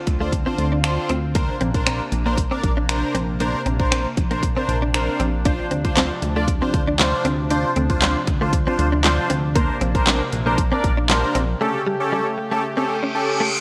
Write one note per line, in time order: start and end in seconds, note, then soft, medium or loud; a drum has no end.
0.00 1.31 D3 medium
0.00 1.31 C4 medium
0.00 1.31 F4 medium
0.00 downlifter medium
0.07 0.47 D2 medium
0.07 muted clean electric guitar stroke soft
0.07 kick loud
0.07 closed hi-hat medium
0.20 0.28 A3 medium
0.20 0.33 D4 medium
0.20 0.33 F4 medium
0.20 0.33 C5 loud
0.32 kick medium
0.32 closed hi-hat medium
0.46 0.53 C4 medium
0.46 0.66 D4 medium
0.46 0.66 F4 medium
0.46 0.66 C5 loud
0.58 0.99 D2 loud
0.58 muted clean electric guitar stroke soft
0.58 closed hi-hat medium
0.72 0.79 D4 medium
0.84 1.10 D4 medium
0.84 1.11 F4 medium
0.84 1.11 C5 loud
0.84 finger snap loud
0.84 closed hi-hat medium
1.09 1.50 D2 medium
1.09 1.18 C4 medium
1.09 closed hi-hat medium
1.35 9.52 C3 medium
1.35 1.43 A#3 medium
1.35 5.42 A#3 medium
1.35 1.55 D4 medium
1.35 11.57 D4 medium
1.35 1.56 A#4 medium
1.35 1.56 C5 loud
1.35 kick loud
1.35 closed hi-hat medium
1.49 muted clean electric guitar stroke soft
1.61 2.01 A#1 medium
1.61 1.69 C4 medium
1.61 closed hi-hat medium
1.74 2.01 D4 medium
1.74 2.01 A#4 medium
1.74 2.01 C5 loud
1.74 kick medium
1.74 closed hi-hat soft
1.86 1.95 C4 medium
1.86 finger snap loud
1.86 closed hi-hat medium
2.12 2.53 A#1 medium
2.12 muted clean electric guitar stroke soft
2.12 closed hi-hat medium
2.25 2.33 A#3 medium
2.25 2.38 D4 medium
2.25 2.38 A#4 medium
2.25 2.38 C5 loud
2.38 kick medium
2.38 closed hi-hat medium
2.51 2.58 C4 medium
2.51 2.71 D4 medium
2.51 2.71 A#4 medium
2.51 2.71 D5 loud
2.63 3.04 A#1 loud
2.63 muted clean electric guitar stroke soft
2.63 kick loud
2.63 closed hi-hat medium
2.77 2.84 D4 medium
2.89 3.16 D4 medium
2.89 3.16 A#4 medium
2.89 3.16 C5 loud
2.89 finger snap loud
2.89 closed hi-hat medium
3.15 3.55 A#1 medium
3.15 3.23 C4 medium
3.15 closed hi-hat medium
3.40 3.48 A#3 medium
3.40 3.61 D4 medium
3.40 3.61 A#4 medium
3.40 3.61 C5 loud
3.40 closed hi-hat medium
3.54 muted clean electric guitar stroke soft
3.66 4.06 A#1 medium
3.66 3.74 C4 medium
3.66 closed hi-hat medium
3.79 4.06 D4 medium
3.79 4.06 A#4 medium
3.79 4.06 C5 loud
3.79 kick medium
3.92 4.00 C4 medium
3.92 finger snap loud
3.92 closed hi-hat medium
4.17 4.58 A#1 medium
4.17 muted clean electric guitar stroke soft
4.17 kick loud
4.17 closed hi-hat medium
4.31 4.38 A#3 medium
4.31 4.43 D4 medium
4.31 4.43 A#4 medium
4.31 4.44 C5 loud
4.31 closed hi-hat soft
4.43 kick loud
4.43 closed hi-hat medium
4.56 4.64 C4 medium
4.56 4.76 D4 medium
4.56 4.76 A#4 medium
4.56 4.76 C5 loud
4.69 5.09 A#1 loud
4.69 muted clean electric guitar stroke soft
4.69 closed hi-hat medium
4.82 4.89 D4 medium
4.94 5.21 D4 medium
4.94 5.21 A#4 medium
4.94 5.21 C5 loud
4.94 finger snap loud
4.94 closed hi-hat medium
5.20 5.60 A#1 medium
5.20 5.28 C4 medium
5.20 closed hi-hat medium
5.45 9.52 F3 medium
5.45 5.66 D4 medium
5.45 5.54 D4 medium
5.45 5.66 F4 medium
5.45 5.66 C5 loud
5.45 kick loud
5.45 closed hi-hat medium
5.59 muted clean electric guitar stroke soft
5.71 6.12 D2 medium
5.71 5.79 C4 medium
5.71 closed hi-hat medium
5.85 6.11 D4 medium
5.85 6.11 F4 medium
5.85 6.11 C5 loud
5.85 kick medium
5.85 closed hi-hat medium
5.97 6.05 C4 medium
5.97 snare medium
5.97 clap loud
5.97 closed hi-hat loud
6.22 6.63 D2 medium
6.22 muted clean electric guitar stroke soft
6.22 closed hi-hat medium
6.36 6.43 A3 medium
6.36 6.48 D4 medium
6.36 6.49 F4 medium
6.36 6.49 D5 loud
6.48 kick medium
6.48 closed hi-hat medium
6.61 6.69 C4 medium
6.61 6.81 D4 medium
6.61 6.81 F4 medium
6.61 6.81 C5 loud
6.74 7.14 D2 loud
6.74 muted clean electric guitar stroke soft
6.74 kick loud
6.74 closed hi-hat medium
6.88 6.95 D4 medium
6.99 7.26 D4 medium
6.99 7.26 F4 medium
6.99 7.26 C5 loud
6.99 snare medium
6.99 clap loud
6.99 closed hi-hat medium
7.25 7.65 D2 medium
7.25 7.33 C4 medium
7.25 closed hi-hat medium
7.50 7.71 D4 medium
7.50 7.59 D4 medium
7.50 7.71 F4 medium
7.50 7.71 C5 loud
7.50 closed hi-hat medium
7.64 muted clean electric guitar stroke soft
7.76 8.17 D2 medium
7.76 7.84 C4 medium
7.76 closed hi-hat medium
7.89 8.16 D4 medium
7.89 8.16 F4 medium
7.89 8.16 C5 loud
7.89 kick medium
7.89 closed hi-hat medium
8.02 8.10 C4 medium
8.02 snare medium
8.02 clap loud
8.02 closed hi-hat loud
8.27 8.68 D2 medium
8.27 muted clean electric guitar stroke soft
8.27 kick loud
8.27 closed hi-hat medium
8.41 8.48 A3 medium
8.41 8.54 D4 medium
8.41 8.54 F4 medium
8.41 8.54 C5 loud
8.53 kick loud
8.53 closed hi-hat medium
8.67 8.74 C4 medium
8.67 8.86 D4 medium
8.67 8.86 F4 medium
8.67 8.87 C5 loud
8.79 9.19 D2 loud
8.79 muted clean electric guitar stroke soft
8.79 closed hi-hat medium
8.92 9.00 D4 medium
9.04 9.31 D4 medium
9.04 9.31 F4 medium
9.04 9.31 C5 loud
9.04 snare medium
9.04 clap loud
9.04 closed hi-hat medium
9.30 9.70 D2 medium
9.30 9.38 C4 medium
9.30 closed hi-hat medium
9.55 9.64 A#3 medium
9.55 9.76 D4 medium
9.55 9.76 A#4 medium
9.55 9.76 C5 loud
9.55 kick loud
9.55 closed hi-hat medium
9.69 muted clean electric guitar stroke soft
9.81 10.22 A#1 medium
9.81 9.89 C4 medium
9.81 closed hi-hat medium
9.95 10.21 D4 loud
9.95 10.21 A#4 medium
9.95 10.22 C5 loud
9.95 kick medium
9.95 closed hi-hat soft
10.07 10.15 C4 medium
10.07 snare medium
10.07 clap loud
10.07 closed hi-hat medium
10.32 10.73 A#1 medium
10.32 muted clean electric guitar stroke soft
10.32 closed hi-hat medium
10.46 10.53 A#3 medium
10.46 10.59 D4 medium
10.46 10.59 A#4 medium
10.46 10.59 C5 loud
10.58 kick medium
10.58 closed hi-hat medium
10.72 10.79 C4 medium
10.72 10.91 D4 medium
10.72 10.91 A#4 medium
10.72 10.92 D5 loud
10.84 11.24 A#1 loud
10.84 muted clean electric guitar stroke soft
10.84 kick loud
10.84 closed hi-hat medium
10.97 11.05 D4 medium
11.09 11.36 D4 medium
11.09 11.36 A#4 medium
11.09 11.36 C5 loud
11.09 snare medium
11.09 clap loud
11.09 closed hi-hat medium
11.35 11.55 A#1 medium
11.35 11.43 C4 medium
11.35 closed hi-hat medium
11.61 13.60 C#3 medium
11.61 13.60 A3 medium
11.61 11.69 A3 medium
11.61 11.81 C#4 medium
11.61 13.60 G4 medium
11.61 11.81 G4 medium
11.61 11.81 A4 loud
11.74 muted clean electric guitar stroke soft
11.87 11.95 G3 medium
12.00 12.27 C#4 medium
12.00 12.27 G4 medium
12.00 12.27 A4 loud
12.12 12.20 G3 medium
12.38 muted clean electric guitar stroke soft
12.51 12.59 A3 medium
12.51 12.64 C#4 medium
12.51 12.64 G4 medium
12.51 12.64 A4 loud
12.63 reverse cymbal medium
12.77 12.84 C4 medium
12.77 12.96 C#4 medium
12.77 12.97 G4 medium
12.77 12.97 A4 loud
12.89 muted clean electric guitar stroke soft
13.03 13.10 C#4 medium
13.14 13.41 C#4 loud
13.14 13.41 G4 medium
13.14 13.41 A4 loud
13.40 13.48 A3 medium